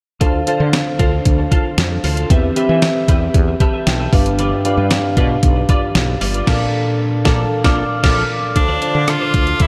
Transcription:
0.21 fretless electric bass D2, tine electric piano D3 D4 A4 C5 F5, clean electric guitar F4 A4 C5, kick, closed hi-hat
0.34 muted clean electric guitar stroke
0.47 tine electric piano D4 A4 C5 F5, clean electric guitar F4 A4 C5, closed hi-hat
0.60 fretless electric bass D3, clean electric guitar F4 A4 C5
0.73 snare, closed hi-hat
0.86 muted clean electric guitar stroke
0.99 fretless electric bass D2, clean electric guitar F4 A4 C5, kick, closed hi-hat
1.12 muted clean electric guitar stroke
1.25 fretless electric bass D2, kick, closed hi-hat
1.39 muted clean electric guitar stroke
1.51 clean electric guitar F4 A4 C5, kick, closed hi-hat
1.65 muted clean electric guitar stroke
1.78 fretless electric bass F2, muted clean electric guitar stroke, snare, closed hi-hat
1.91 muted clean electric guitar stroke
2.04 fretless electric bass D2, clean electric guitar F4 A4 C5, open hi-hat
2.17 clean electric guitar F4 A4 C5, closed hi-hat
2.30 fretless electric bass E2, tine electric piano E3 C4 G4 B4 E5, clean electric guitar G4 B4 E5, kick, closed hi-hat
2.43 muted clean electric guitar stroke
2.56 tine electric piano C4 G4 B4 E5, clean electric guitar G4 B4 E5, closed hi-hat
2.69 fretless electric bass E3, clean electric guitar G4 B4 E5
2.82 snare, closed hi-hat
2.96 muted clean electric guitar stroke
3.08 fretless electric bass E2, clean electric guitar G4 B4 E5, kick, closed hi-hat
3.22 muted clean electric guitar stroke
3.34 fretless electric bass E2, muted clean electric guitar stroke, kick, closed hi-hat
3.48 muted clean electric guitar stroke
3.60 clean electric guitar G4 B4 E5, tine electric piano A5, kick, closed hi-hat
3.74 clean electric guitar G4 B4 E5
3.86 fretless electric bass B1, tine electric piano G5, muted clean electric guitar stroke, snare, closed hi-hat
4.00 clean electric guitar G4 B4 E5
4.12 fretless electric bass G1, tine electric piano G2 D4 G4 B4 F5, clean electric guitar F4 B4 D5, kick, open hi-hat
4.26 muted clean electric guitar stroke, closed hi-hat
4.39 clean electric guitar F4 B4 D5, closed hi-hat
4.52 muted clean electric guitar stroke
4.64 tine electric piano D4 G4 B4 F5, clean electric guitar F4 B4 D5, closed hi-hat
4.77 fretless electric bass G2, clean electric guitar F4 B4 D5
4.91 snare, closed hi-hat
5.04 muted clean electric guitar stroke
5.17 fretless electric bass B2, clean electric guitar F4 B4 D5, kick, closed hi-hat
5.30 muted clean electric guitar stroke
5.43 fretless electric bass B1, kick, closed hi-hat
5.56 muted clean electric guitar stroke
5.69 clean electric guitar F4 B4 D5, kick, closed hi-hat
5.82 muted clean electric guitar stroke
5.95 fretless electric bass B1, muted clean electric guitar stroke, snare, closed hi-hat
6.08 muted clean electric guitar stroke
6.21 fretless electric bass G1, clean electric guitar F4 B4 D5, open hi-hat
6.34 clean electric guitar F4 B4 D5, closed hi-hat
6.47 fretless electric bass A#1, tine electric piano A#2 D4 A4 A#4 F5, clean electric guitar F4 A4 D5, kick, snare, crash
7.25 fretless electric bass A#1, tine electric piano D4 A4 A#4 F5, clean electric guitar F4 A4 D5, kick, snare
7.64 fretless electric bass A#1, clean electric guitar F4 A4 D5, tine electric piano D6 F6, kick, snare
8.03 fretless electric bass A#1, clean electric guitar F4 A4 D5, tine electric piano D6 F6, kick, snare, crash
8.56 fretless electric bass D2, tine electric piano D3 D4 A4 C5 F5, tenor saxophone D4, muted clean electric guitar stroke, kick, closed hi-hat
8.68 clean electric guitar F4 C5 D5
8.82 tine electric piano D4 A4 C5 F5, clean electric guitar F4 C5 D5, closed hi-hat
8.95 fretless electric bass D3, muted clean electric guitar stroke
9.08 tenor saxophone F4, muted clean electric guitar stroke, cross-stick, closed hi-hat
9.21 clean electric guitar F4 C5 D5
9.34 fretless electric bass D2, clean electric guitar F4 C5 D5, kick, closed hi-hat
9.47 muted clean electric guitar stroke, closed hi-hat
9.60 fretless electric bass D2, tenor saxophone E4, muted clean electric guitar stroke, kick, closed hi-hat

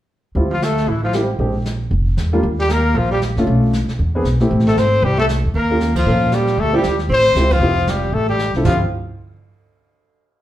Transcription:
0.35 upright bass D2, grand piano G3 C4 E4 F4, brush sweep
0.50 alto saxophone F3, trumpet F4
0.62 alto saxophone A3, trumpet A4, snare, hi-hat pedal
0.77 snare
0.87 upright bass A1, alto saxophone E3, trumpet E4, brush sweep
1.04 alto saxophone F3, trumpet F4
1.13 grand piano G3 C4 E4 G4, snare, hi-hat pedal
1.39 upright bass A#1, grand piano G#3 C4 D4 G4, brush sweep
1.66 snare, hi-hat pedal
1.91 upright bass F1, brush sweep
2.17 upright bass E2, snare, hi-hat pedal
2.33 grand piano G3 A#3 D4 F4
2.43 upright bass D#2, brush sweep
2.59 alto saxophone G3, trumpet G4
2.69 alto saxophone A#3, trumpet A#4, snare, hi-hat pedal
2.95 upright bass A#1, alto saxophone F3, trumpet F4, brush sweep
3.11 alto saxophone G3, trumpet G4
3.22 snare, hi-hat pedal
3.37 upright bass F#2, grand piano A3 C#4 D4 F4, snare
3.47 upright bass B1, brush sweep
3.73 snare, hi-hat pedal
3.88 muted upright bass stroke, snare
3.99 upright bass E2, brush sweep
4.15 grand piano B3 C4 D4 G#4
4.24 upright bass B1, snare, hi-hat pedal
4.40 grand piano A3 C4 E4 G4, snare
4.51 upright bass A1, brush sweep
4.60 snare
4.67 alto saxophone A3, trumpet A4, snare
4.76 upright bass G#1, alto saxophone C4, trumpet C5, snare, hi-hat pedal
5.02 upright bass C2, alto saxophone G3, trumpet G4, brush sweep
5.18 alto saxophone A3, trumpet A4
5.29 snare, hi-hat pedal
5.44 upright bass E2
5.54 upright bass D#2, alto saxophone A#3, trumpet A#4, brush sweep
5.71 grand piano A#3 C#4 F4 G4
5.81 snare, hi-hat pedal
5.95 alto saxophone F3, trumpet F4, kick, ride
6.06 upright bass A#2, grand piano A#3 C#4 F4 A4, brush sweep
6.32 alto saxophone G3, trumpet G4, snare, hi-hat pedal
6.47 snare
6.57 upright bass D2, alto saxophone A3, trumpet A4, brush sweep
6.73 alto saxophone G3, grand piano C4 E4 F4 G4
6.77 trumpet G4
6.83 upright bass D#2, snare, hi-hat pedal
6.99 snare
7.09 upright bass A1, alto saxophone C4, brush sweep
7.13 trumpet C5
7.35 upright bass C#2, grand piano C4 E4 F4 G4, snare, hi-hat pedal
7.51 alto saxophone F3, trumpet F4, kick, ride
7.60 upright bass F1, grand piano C4 E4 F4 G4, brush sweep
7.87 alto saxophone G3, trumpet G4, snare, hi-hat pedal
8.12 upright bass A1, alto saxophone A3, trumpet A4, brush sweep
8.29 alto saxophone G3, trumpet G4
8.39 snare, hi-hat pedal
8.54 upright bass C2, grand piano D3 C4 E4 F4 A4, snare
8.65 upright bass D2, alto saxophone F3, grand piano C4 E4 F4 G4, trumpet F4, kick, floor tom, crash

